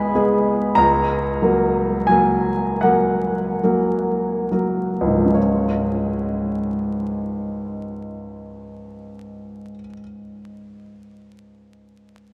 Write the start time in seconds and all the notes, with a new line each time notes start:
Already playing: G#3 B3 G#4 G#5 B5
0.15 G#3 B3 G#4
0.75 C#2 A#5
1.42 F#3 A#3 A#4
2.07 F#3 A#3 A#4 G#5
2.81 F#3 A#3 A#4 F#5
3.63 F#3 A#3 A#4
4.51 F#3 A#3 A#4
5.01 C#2
5.07 G#2
5.13 F3
5.19 G#3
5.25 C#4
5.30 F4
5.34 C#5